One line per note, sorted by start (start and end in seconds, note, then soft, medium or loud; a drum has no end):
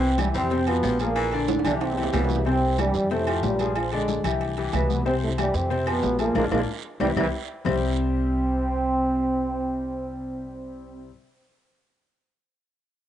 0.00 0.29 C2 medium
0.00 0.13 C3 medium
0.00 0.17 C3 medium
0.00 0.12 E3 medium
0.00 0.13 C4 medium
0.00 0.17 C4 loud
0.00 0.13 C5 medium
0.00 high conga soft
0.18 0.26 G2 medium
0.18 0.45 E3 medium
0.18 0.26 G3 medium
0.18 0.45 E4 medium
0.18 0.45 G4 medium
0.18 high conga loud
0.18 low timbale medium
0.18 low agogo loud
0.18 short guiro medium
0.18 claves medium
0.34 0.80 F2 loud
0.34 0.65 C3 medium
0.34 0.61 G3 medium
0.34 0.65 C4 loud
0.34 high conga soft
0.34 short guiro medium
0.50 0.64 C3 medium
0.50 0.64 C4 medium
0.50 0.65 C5 medium
0.50 high conga soft
0.50 low agogo medium
0.50 long guiro medium
0.67 1.00 B2 medium
0.67 0.94 F3 medium
0.67 1.00 B3 loud
0.67 0.94 F4 medium
0.67 0.94 G4 medium
0.67 high conga soft
0.67 low agogo loud
0.67 claves medium
0.83 1.59 A#1 loud
0.83 1.00 F3 medium
0.83 high conga medium
0.83 low timbale medium
0.83 short guiro medium
0.99 1.46 A#2 medium
0.99 1.27 F3 medium
0.99 1.46 A#3 loud
0.99 1.27 F4 medium
0.99 1.27 G#4 medium
0.99 high conga medium
0.99 low agogo medium
0.99 short guiro medium
1.16 1.42 E3 loud
1.16 high conga soft
1.16 low agogo loud
1.16 long guiro medium
1.16 claves medium
1.32 1.59 D3 loud
1.32 1.60 D4 loud
1.32 1.60 D5 loud
1.32 high conga soft
1.32 low agogo medium
1.48 high conga loud
1.48 high timbale loud
1.48 short guiro medium
1.59 high timbale medium
1.64 2.10 C2 loud
1.64 1.91 D3 medium
1.64 1.73 D3 medium
1.64 1.92 E3 medium
1.64 1.73 D4 loud
1.64 1.92 E4 medium
1.64 1.92 G4 medium
1.64 low conga medium
1.64 low agogo loud
1.64 short guiro medium
1.64 claves medium
1.70 low timbale medium
1.81 2.27 C3 medium
1.81 2.27 C4 loud
1.81 high conga soft
1.81 high timbale loud
1.81 low agogo medium
1.81 long guiro medium
1.92 low timbale medium
1.97 2.11 E3 medium
1.97 2.11 E4 medium
1.97 2.11 G4 medium
1.97 high conga soft
1.97 low agogo medium
2.03 low timbale loud
2.13 2.89 C2 loud
2.13 2.45 B2 medium
2.13 2.40 E3 medium
2.13 2.30 G3 medium
2.13 2.44 B3 loud
2.13 2.40 E4 medium
2.13 2.40 E5 medium
2.13 high conga medium
2.13 low timbale medium
2.13 low agogo loud
2.13 short guiro medium
2.13 claves medium
2.24 low timbale medium
2.29 high conga medium
2.29 short guiro medium
2.36 low timbale medium
2.45 2.72 C3 medium
2.45 2.77 C3 medium
2.45 2.73 C4 medium
2.45 2.77 C4 loud
2.45 2.73 C5 medium
2.45 high conga soft
2.45 low agogo medium
2.45 long guiro medium
2.62 high conga soft
2.78 3.10 G2 medium
2.78 3.05 E3 medium
2.78 3.09 G3 loud
2.78 3.05 E4 medium
2.78 3.06 G4 medium
2.78 high conga loud
2.78 low timbale medium
2.78 low agogo loud
2.78 short guiro medium
2.78 claves medium
2.94 3.40 F2 loud
2.94 short guiro medium
3.10 3.42 A2 medium
3.10 3.24 C3 medium
3.10 3.42 A3 loud
3.10 3.24 C4 medium
3.10 3.25 C5 medium
3.10 high conga soft
3.10 low agogo medium
3.10 long guiro medium
3.27 3.54 F3 medium
3.27 3.54 F4 medium
3.27 3.54 G4 medium
3.27 high conga soft
3.27 low agogo loud
3.27 claves medium
3.43 4.19 A#1 loud
3.43 3.75 G2 medium
3.43 3.75 G3 medium
3.43 high conga medium
3.43 low timbale medium
3.43 short guiro medium
3.59 3.87 F3 medium
3.59 3.87 F4 medium
3.59 3.87 G#4 medium
3.59 high conga medium
3.59 low agogo medium
3.59 short guiro medium
3.75 3.93 F3 medium
3.75 3.93 F4 medium
3.75 high conga soft
3.75 low agogo loud
3.75 long guiro medium
3.75 claves medium
3.92 4.23 G#2 medium
3.92 4.19 D3 loud
3.92 4.23 G#3 medium
3.92 4.19 D4 medium
3.92 4.19 D5 medium
3.92 high conga soft
3.92 low agogo loud
4.08 high conga loud
4.08 low timbale medium
4.08 short guiro medium
4.24 4.70 C2 loud
4.24 4.51 E3 medium
4.24 4.52 E4 medium
4.24 4.52 G4 medium
4.24 low conga medium
4.24 low agogo loud
4.24 short guiro medium
4.24 claves medium
4.41 high conga soft
4.41 low agogo loud
4.41 long guiro medium
4.57 4.71 E3 medium
4.57 4.71 E4 medium
4.57 4.71 G4 medium
4.57 high conga soft
4.57 low agogo medium
4.73 5.49 C2 medium
4.73 5.04 B2 medium
4.73 5.00 E3 medium
4.73 5.04 B3 medium
4.73 5.00 E4 medium
4.73 5.01 E5 medium
4.73 high conga medium
4.73 low timbale medium
4.73 low agogo loud
4.73 short guiro medium
4.73 claves medium
4.90 high conga medium
4.90 short guiro medium
5.05 5.32 C3 medium
5.05 5.14 C3 medium
5.05 5.32 C4 medium
5.05 5.14 C4 loud
5.05 5.33 C5 loud
5.05 low agogo medium
5.05 long guiro medium
5.23 5.30 A2 medium
5.23 5.31 A3 medium
5.23 high conga soft
5.38 5.54 G2 medium
5.38 5.65 E3 medium
5.38 5.54 G3 loud
5.38 5.65 E4 medium
5.38 5.65 G4 medium
5.38 high conga loud
5.38 low timbale medium
5.38 low agogo loud
5.38 short guiro medium
5.38 claves medium
5.54 6.00 F2 loud
5.54 5.88 C3 medium
5.54 5.88 C4 medium
5.54 high conga soft
5.54 short guiro medium
5.70 5.84 C3 medium
5.70 5.84 C4 medium
5.70 5.84 C5 medium
5.70 high conga soft
5.70 low agogo medium
5.70 long guiro medium
5.86 6.20 B2 medium
5.86 6.13 F3 medium
5.86 6.20 B3 loud
5.86 6.14 F4 medium
5.86 6.14 G4 medium
5.86 high conga soft
5.86 low agogo loud
5.86 claves medium
6.03 6.33 A#1 medium
6.03 high conga medium
6.03 low timbale medium
6.03 short guiro medium
6.19 6.35 A#2 medium
6.19 6.33 F3 medium
6.19 6.35 A#3 loud
6.19 6.33 F4 medium
6.19 6.33 G#4 medium
6.19 high conga medium
6.19 low agogo medium
6.19 short guiro medium
6.35 6.48 A#1 loud
6.35 6.44 F3 loud
6.35 6.44 G#3 loud
6.35 6.46 A#3 loud
6.35 6.44 A#3 loud
6.35 6.46 D4 loud
6.35 6.46 F4 loud
6.35 high conga loud
6.35 high timbale medium
6.35 long guiro loud
6.35 claves medium
6.51 6.64 A#1 loud
6.51 6.59 F3 medium
6.51 6.59 G#3 loud
6.51 6.59 A#3 medium
6.51 6.62 A#3 loud
6.51 6.62 D4 loud
6.51 6.62 F4 loud
6.51 high conga loud
6.51 high timbale loud
6.51 long guiro loud
6.51 claves loud
7.00 7.12 C2 loud
7.00 7.08 C3 medium
7.00 7.09 E3 loud
7.00 7.08 G3 medium
7.00 7.11 C4 loud
7.00 7.11 E4 loud
7.00 7.11 G4 loud
7.00 high conga loud
7.00 high timbale loud
7.00 long guiro loud
7.00 claves loud
7.16 7.29 C2 loud
7.16 7.25 C3 loud
7.16 7.25 E3 loud
7.16 7.25 G3 loud
7.16 7.27 C4 loud
7.16 7.27 E4 loud
7.16 7.27 G4 loud
7.16 high conga medium
7.16 high timbale loud
7.16 long guiro loud
7.16 claves loud
7.65 11.09 C2 loud
7.65 11.08 C3 medium
7.65 11.08 G3 medium
7.65 11.08 C4 medium
7.65 11.02 C4 loud
7.65 11.09 E4 medium
7.65 11.09 G4 medium
7.65 11.09 C5 loud
7.65 low conga loud
7.65 low timbale medium
7.65 long guiro loud
7.65 claves loud